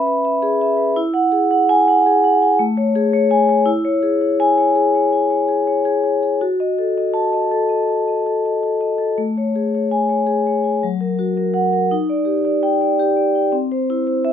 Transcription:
Already playing: C#4 B4 E5 B5
0.06 B4
0.25 E5
0.42 G#4
0.61 E5
0.77 B4
0.96 E4
1.14 F#5
1.32 G#4
1.51 F#5
1.69 G#5
1.88 F#5
2.06 G#4
2.24 F#5
2.42 G#5
2.59 A3
2.77 C#5
2.95 G#4
3.13 C#5
3.31 G#5
3.49 C#5
3.66 E4
3.85 C#5
4.03 G#4
4.21 C#5
4.40 G#5
4.58 C#5
4.76 G#4
4.95 C#5
5.13 G#5
5.30 C#5
5.48 G#4
5.67 C#5
5.85 G#4
6.04 C#5
6.23 G#4
6.41 F#4
6.60 D#5
6.79 A4
6.98 D#5
7.14 A5
7.33 D#5
7.51 A4
7.69 D#5
7.89 A5
8.08 D#5
8.26 A4
8.46 D#5
8.63 A4
8.81 D#5
8.98 A4
9.18 A3
9.38 C#5
9.56 G#4
9.75 C#5
9.91 G#5
10.09 C#5
10.27 G#4
10.47 C#5
10.64 G#5
10.83 F#3
11.01 A#4
11.19 F#4
11.37 A#4
11.54 F#5
11.73 A#4
11.91 D#4
12.09 D5
12.25 G4
12.45 D5
12.63 G5
12.81 D5
13.00 G4
13.17 D5
13.35 G5
13.52 C4
13.72 C5
13.90 E4
14.07 C5
14.25 E5

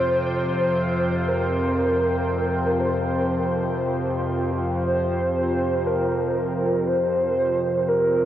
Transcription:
Already playing: F2 C3 F4 C5 G5
0.77 C5
1.28 A#4
2.80 C5
4.84 C5
5.86 A#4
6.87 C5
7.88 A#4

